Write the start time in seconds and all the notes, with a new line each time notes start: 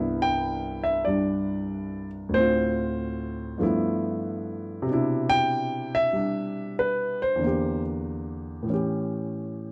Already playing: C2 G2 B3 E4
0.22 G5
0.84 E5
1.05 G2 G3 D4 D5
2.29 D2 A2
2.34 C4 C5
2.40 F4
3.58 G2 F3 A3 B3
3.63 E4
4.82 B2 C3
4.90 D4 E4
5.30 G5
5.95 E5
6.13 G3 D4
6.79 B4
7.22 C5
7.36 E2 D3
7.43 A#3 G4
8.63 A2 E3
8.70 C#4 G4